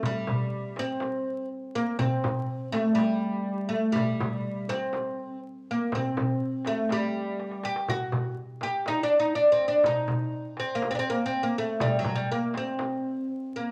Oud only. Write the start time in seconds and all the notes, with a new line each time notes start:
0.06 G3
0.79 C4
1.75 A#3
1.99 C4
2.72 A3
2.95 G3
3.69 A3
3.92 G3
4.69 C4
5.71 A#3
5.95 C4
6.67 A3
6.92 G3
7.65 G4
7.90 F#4
8.63 G4
8.88 D#4
9.03 D4
9.20 D#4
9.35 D4
9.52 C4
9.68 D4
9.86 D#4
10.60 C4
10.75 A#3
10.91 C4
10.95 D4
10.99 C4
11.10 A#3
11.26 C4
11.43 A#3
11.58 A3
11.81 G3
11.99 F#3
12.16 G3
12.32 A#3
12.57 C4
13.56 A#3